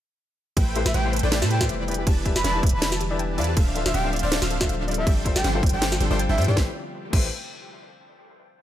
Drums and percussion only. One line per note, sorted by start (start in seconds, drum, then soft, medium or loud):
0.57 kick loud
0.57 closed hi-hat medium
0.57 crash soft
0.76 closed hi-hat medium
0.86 snare medium
0.94 closed hi-hat medium
1.13 closed hi-hat medium
1.16 closed hi-hat medium
1.19 closed hi-hat medium
1.32 snare loud
1.32 closed hi-hat medium
1.32 crash soft
1.42 snare medium
1.51 closed hi-hat medium
1.61 kick medium
1.61 snare medium
1.69 closed hi-hat medium
1.88 closed hi-hat medium
1.91 closed hi-hat medium
1.94 closed hi-hat medium
2.07 kick loud
2.07 closed hi-hat medium
2.07 crash soft
2.26 kick medium
2.26 closed hi-hat medium
2.36 snare medium
2.44 snare medium
2.44 closed hi-hat medium
2.63 kick loud
2.63 closed hi-hat soft
2.67 closed hi-hat medium
2.69 closed hi-hat medium
2.82 snare loud
2.82 closed hi-hat medium
2.82 crash soft
2.92 snare medium
3.01 closed hi-hat medium
3.19 closed hi-hat medium
3.38 closed hi-hat soft
3.41 closed hi-hat medium
3.44 closed hi-hat medium
3.57 kick loud
3.57 closed hi-hat medium
3.57 crash soft
3.76 closed hi-hat medium
3.86 snare medium
3.94 closed hi-hat medium
4.13 closed hi-hat soft
4.16 closed hi-hat medium
4.19 closed hi-hat medium
4.32 snare loud
4.32 closed hi-hat medium
4.32 crash soft
4.42 snare medium
4.51 closed hi-hat medium
4.61 kick medium
4.61 snare medium
4.69 closed hi-hat medium
4.88 closed hi-hat soft
4.91 closed hi-hat medium
4.94 closed hi-hat medium
5.07 kick loud
5.07 closed hi-hat medium
5.07 crash soft
5.25 kick medium
5.25 closed hi-hat medium
5.36 snare medium
5.44 snare medium
5.44 closed hi-hat medium
5.63 kick loud
5.63 closed hi-hat soft
5.66 closed hi-hat medium
5.69 closed hi-hat medium
5.82 snare loud
5.82 closed hi-hat medium
5.82 crash soft
5.92 snare medium
6.00 closed hi-hat medium
6.19 closed hi-hat medium
6.38 closed hi-hat soft
6.42 closed hi-hat medium
6.44 closed hi-hat medium
6.57 kick loud
6.57 snare medium
7.13 kick loud
7.13 crash medium